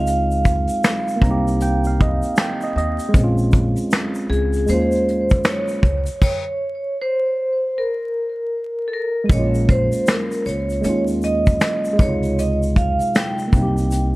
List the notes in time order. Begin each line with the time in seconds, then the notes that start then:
Already playing: C#2 G#3 C4 D#4 F4 F5
0.07 closed hi-hat, shaker
0.31 shaker
0.45 kick, closed hi-hat, shaker
0.67 closed hi-hat, shaker
0.83 finger snap, snare, closed hi-hat, shaker
1.08 shaker
1.16 A#3
1.21 C2 C4 A#5, kick, closed hi-hat
1.26 D#4
1.31 G4
1.47 closed hi-hat, shaker
1.60 G5, closed hi-hat, shaker
1.84 F5, shaker
2.01 D#5, kick, closed hi-hat
2.23 closed hi-hat, shaker
2.36 G5, finger snap, snare, shaker
2.41 closed hi-hat
2.61 D#5, shaker
2.76 D#2 D#5, closed hi-hat
2.99 closed hi-hat, shaker
3.09 G#3
3.14 A#1 C4, kick, closed hi-hat, shaker
3.19 C#4
3.24 F4
3.38 shaker
3.52 kick, closed hi-hat, shaker
3.76 closed hi-hat, shaker
3.91 finger snap, snare, closed hi-hat, shaker
4.15 shaker
4.29 C#2 G#4, closed hi-hat
4.53 closed hi-hat, shaker
4.66 D#2 G#3 A#3 C5, closed hi-hat, shaker
4.71 C#4 F4
4.92 closed hi-hat, shaker
5.08 closed hi-hat
5.30 kick, closed hi-hat, shaker
5.44 C#5, finger snap, snare, closed hi-hat, shaker
5.68 closed hi-hat, shaker
5.83 C#2, kick, closed hi-hat
6.06 closed hi-hat, shaker
6.21 C#5, kick, crash
7.01 C5
7.78 A#4
8.88 A4
8.94 A#4
9.24 G#3 D#5
9.29 A#1 A#3 C#5, kick, closed hi-hat, shaker
9.34 C#4
9.39 F4
9.55 shaker
9.69 C5, kick, closed hi-hat
9.92 closed hi-hat, shaker
10.07 A#4, finger snap, snare, closed hi-hat, shaker
10.32 closed hi-hat, shaker
10.46 C#2 C#5, closed hi-hat, shaker
10.70 closed hi-hat, shaker
10.81 D#2 G#3 A#3 C#5, closed hi-hat, shaker
10.86 C#4 F4
11.08 shaker
11.22 D#5, closed hi-hat, shaker
11.47 kick, closed hi-hat, shaker
11.61 finger snap, snare, closed hi-hat, shaker
11.85 shaker
11.93 G#3
11.98 C#2 C3 C#5, kick, closed hi-hat, shaker
12.03 D#4
12.08 F4
12.22 closed hi-hat, shaker
12.39 D#5, closed hi-hat, shaker
12.63 shaker
12.76 F5, kick, closed hi-hat
12.99 closed hi-hat, shaker
13.15 G5, finger snap, snare, closed hi-hat, shaker
13.39 shaker
13.48 A#3
13.53 C2 C4, kick, closed hi-hat, shaker
13.58 D#4
13.63 G4
13.77 closed hi-hat, shaker
13.91 closed hi-hat, shaker